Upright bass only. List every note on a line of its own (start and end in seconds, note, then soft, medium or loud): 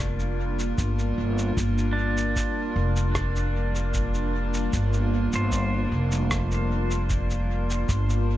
0.00 0.77 F1 medium
0.78 1.13 G1 medium
1.18 1.53 G1 medium
1.57 2.32 G1 loud
2.76 4.69 F1 medium
4.73 5.29 G1 loud
5.33 5.88 G1 loud
5.92 7.85 F1 medium
7.89 8.37 G1 loud